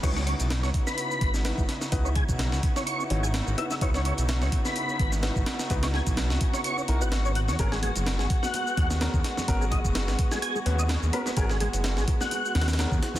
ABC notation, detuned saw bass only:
X:1
M:4/4
L:1/16
Q:"Swing 16ths" 1/4=127
K:C#dor
V:1 name="Detuned saw bass" clef=bass
C,,3 B,,,2 C,, z4 G,,,3 G,,, z2 | C,,3 B,,,2 C,, z4 G,,,3 G,,, z2 | C,,3 B,,,2 C,, z4 G,,,3 G,,, z2 | C,,3 B,,,2 C,, z4 B,,, G,,,4 E,, |
G,,,3 F,,,2 G,,, z4 D,,3 D,, z2 | G,,,3 F,,,2 G,,, z4 D,,3 D,, z2 | G,,,3 F,,,2 G,,, z4 D,,3 D,, z2 |]